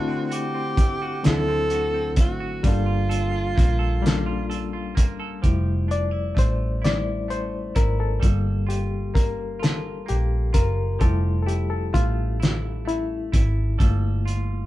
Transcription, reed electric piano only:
0, 0, Header, 1, 2, 480
1, 0, Start_track
1, 0, Key_signature, -1, "major"
1, 0, Tempo, 930233
1, 1362, Time_signature, 6, 3, 24, 8
1, 7566, End_track
2, 0, Start_track
2, 0, Title_t, "Reed electric piano"
2, 0, Program_c, 0, 4
2, 0, Note_on_c, 0, 57, 90
2, 0, Note_on_c, 0, 60, 77
2, 0, Note_on_c, 0, 62, 81
2, 0, Note_on_c, 0, 64, 80
2, 0, Note_on_c, 0, 69, 102
2, 17, Control_c, 0, 64, 127
2, 400, Note_off_c, 0, 57, 0
2, 403, Note_off_c, 0, 60, 0
2, 406, Note_off_c, 0, 62, 0
2, 410, Note_off_c, 0, 64, 0
2, 412, Note_off_c, 0, 69, 0
2, 635, Note_on_c, 0, 54, 73
2, 643, Note_on_c, 0, 60, 62
2, 648, Note_on_c, 0, 62, 63
2, 654, Note_on_c, 0, 64, 70
2, 661, Note_on_c, 0, 69, 74
2, 1118, Note_off_c, 0, 54, 0
2, 1122, Note_off_c, 0, 60, 0
2, 1125, Note_off_c, 0, 62, 0
2, 1128, Note_off_c, 0, 64, 0
2, 1131, Note_off_c, 0, 69, 0
2, 1358, Note_on_c, 0, 55, 84
2, 1365, Note_on_c, 0, 58, 71
2, 1368, Control_c, 0, 64, 0
2, 1370, Note_on_c, 0, 62, 78
2, 1380, Note_on_c, 0, 65, 81
2, 1387, Note_on_c, 0, 69, 90
2, 1466, Control_c, 0, 64, 127
2, 1840, Note_off_c, 0, 55, 0
2, 1843, Note_off_c, 0, 58, 0
2, 1846, Note_off_c, 0, 62, 0
2, 1851, Note_off_c, 0, 65, 0
2, 1854, Note_off_c, 0, 69, 0
2, 2075, Note_on_c, 0, 55, 84
2, 2085, Note_on_c, 0, 58, 76
2, 2090, Note_on_c, 0, 62, 76
2, 2098, Note_on_c, 0, 65, 74
2, 2104, Note_on_c, 0, 69, 94
2, 2558, Note_off_c, 0, 55, 0
2, 2563, Note_off_c, 0, 58, 0
2, 2566, Note_off_c, 0, 62, 0
2, 2570, Note_off_c, 0, 65, 0
2, 2572, Note_off_c, 0, 69, 0
2, 2808, Control_c, 0, 64, 0
2, 2808, Note_on_c, 0, 55, 54
2, 2814, Note_on_c, 0, 57, 47
2, 2818, Note_on_c, 0, 64, 59
2, 2912, Control_c, 0, 64, 127
2, 3051, Note_on_c, 0, 74, 100
2, 3294, Note_off_c, 0, 74, 0
2, 3296, Note_on_c, 0, 72, 98
2, 3401, Note_off_c, 0, 72, 0
2, 3504, Note_off_c, 0, 55, 0
2, 3507, Note_off_c, 0, 57, 0
2, 3509, Note_off_c, 0, 64, 0
2, 3532, Note_on_c, 0, 74, 93
2, 3533, Note_on_c, 0, 55, 44
2, 3533, Note_on_c, 0, 57, 42
2, 3535, Note_on_c, 0, 64, 50
2, 3747, Note_off_c, 0, 55, 0
2, 3747, Note_off_c, 0, 57, 0
2, 3748, Note_off_c, 0, 64, 0
2, 3751, Note_off_c, 0, 74, 0
2, 3769, Note_on_c, 0, 72, 92
2, 4005, Note_on_c, 0, 70, 95
2, 4013, Note_off_c, 0, 72, 0
2, 4127, Note_off_c, 0, 70, 0
2, 4128, Note_on_c, 0, 69, 97
2, 4249, Control_c, 0, 64, 0
2, 4250, Note_on_c, 0, 55, 57
2, 4254, Note_on_c, 0, 58, 50
2, 4257, Note_on_c, 0, 65, 62
2, 4327, Control_c, 0, 64, 127
2, 4482, Note_on_c, 0, 67, 88
2, 4496, Note_off_c, 0, 69, 0
2, 4720, Note_on_c, 0, 70, 85
2, 4730, Note_off_c, 0, 67, 0
2, 4945, Note_off_c, 0, 55, 0
2, 4947, Note_off_c, 0, 58, 0
2, 4949, Note_off_c, 0, 65, 0
2, 4968, Note_off_c, 0, 70, 0
2, 4968, Note_on_c, 0, 69, 86
2, 5205, Note_on_c, 0, 67, 93
2, 5212, Note_off_c, 0, 69, 0
2, 5439, Note_on_c, 0, 70, 94
2, 5451, Note_off_c, 0, 67, 0
2, 5682, Note_on_c, 0, 69, 97
2, 5687, Note_on_c, 0, 57, 53
2, 5688, Note_off_c, 0, 70, 0
2, 5688, Control_c, 0, 64, 0
2, 5688, Note_on_c, 0, 55, 53
2, 5693, Note_on_c, 0, 64, 62
2, 5785, Control_c, 0, 64, 127
2, 5889, Note_off_c, 0, 69, 0
2, 5895, Note_on_c, 0, 69, 65
2, 5919, Note_on_c, 0, 67, 85
2, 5924, Note_off_c, 0, 69, 0
2, 6004, Note_off_c, 0, 55, 0
2, 6004, Note_off_c, 0, 57, 0
2, 6007, Note_off_c, 0, 64, 0
2, 6037, Note_on_c, 0, 69, 78
2, 6044, Note_off_c, 0, 67, 0
2, 6160, Note_on_c, 0, 65, 95
2, 6163, Note_off_c, 0, 69, 0
2, 6644, Note_on_c, 0, 64, 85
2, 6656, Note_off_c, 0, 65, 0
2, 7128, Control_c, 0, 64, 0
2, 7129, Note_on_c, 0, 57, 60
2, 7135, Note_on_c, 0, 58, 51
2, 7137, Note_on_c, 0, 65, 60
2, 7221, Control_c, 0, 64, 127
2, 7445, Note_off_c, 0, 57, 0
2, 7448, Note_off_c, 0, 58, 0
2, 7449, Note_off_c, 0, 65, 0
2, 7566, Note_off_c, 0, 64, 0
2, 7566, End_track
0, 0, End_of_file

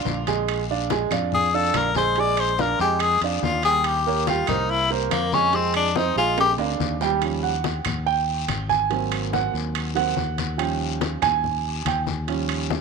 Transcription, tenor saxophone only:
0, 0, Header, 1, 2, 480
1, 0, Start_track
1, 0, Tempo, 421644
1, 546, Time_signature, 4, 2, 24, 8
1, 14581, End_track
2, 0, Start_track
2, 0, Title_t, "Tenor saxophone"
2, 0, Program_c, 0, 66
2, 1531, Note_on_c, 0, 68, 99
2, 1767, Note_on_c, 0, 69, 102
2, 1784, Note_off_c, 0, 68, 0
2, 2008, Note_on_c, 0, 70, 95
2, 2025, Note_off_c, 0, 69, 0
2, 2237, Note_off_c, 0, 70, 0
2, 2251, Note_on_c, 0, 72, 102
2, 2500, Note_on_c, 0, 74, 113
2, 2517, Note_off_c, 0, 72, 0
2, 2729, Note_on_c, 0, 72, 96
2, 2746, Note_off_c, 0, 74, 0
2, 2973, Note_on_c, 0, 70, 96
2, 2990, Note_off_c, 0, 72, 0
2, 3193, Note_off_c, 0, 70, 0
2, 3200, Note_on_c, 0, 67, 104
2, 3427, Note_on_c, 0, 68, 109
2, 3445, Note_off_c, 0, 67, 0
2, 3666, Note_off_c, 0, 68, 0
2, 3675, Note_on_c, 0, 60, 54
2, 3857, Note_off_c, 0, 60, 0
2, 3916, Note_on_c, 0, 65, 92
2, 4150, Note_off_c, 0, 65, 0
2, 4156, Note_on_c, 0, 68, 126
2, 4397, Note_on_c, 0, 67, 103
2, 4414, Note_off_c, 0, 68, 0
2, 4870, Note_on_c, 0, 65, 83
2, 4887, Note_off_c, 0, 67, 0
2, 5100, Note_off_c, 0, 65, 0
2, 5107, Note_on_c, 0, 63, 96
2, 5358, Note_on_c, 0, 64, 107
2, 5375, Note_off_c, 0, 63, 0
2, 5591, Note_off_c, 0, 64, 0
2, 5603, Note_on_c, 0, 55, 52
2, 5785, Note_off_c, 0, 55, 0
2, 5830, Note_on_c, 0, 58, 94
2, 6078, Note_on_c, 0, 61, 97
2, 6096, Note_off_c, 0, 58, 0
2, 6322, Note_on_c, 0, 60, 91
2, 6340, Note_off_c, 0, 61, 0
2, 6550, Note_off_c, 0, 60, 0
2, 6557, Note_on_c, 0, 62, 91
2, 6794, Note_on_c, 0, 63, 90
2, 6811, Note_off_c, 0, 62, 0
2, 7028, Note_off_c, 0, 63, 0
2, 7035, Note_on_c, 0, 65, 103
2, 7252, Note_off_c, 0, 65, 0
2, 7291, Note_on_c, 0, 67, 115
2, 7427, Note_off_c, 0, 67, 0
2, 14581, End_track
0, 0, End_of_file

